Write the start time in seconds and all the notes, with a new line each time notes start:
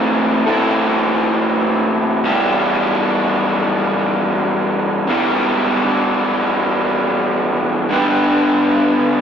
Already playing: A2 E3 C4 E4 A4
0.46 A2 E3 C4 E4 A4
2.24 E2 B2 E3 G3 E4 G4
5.07 E2 B2 E3 G3 E4 G4
7.89 G2 D3 G3 B3 D4 G4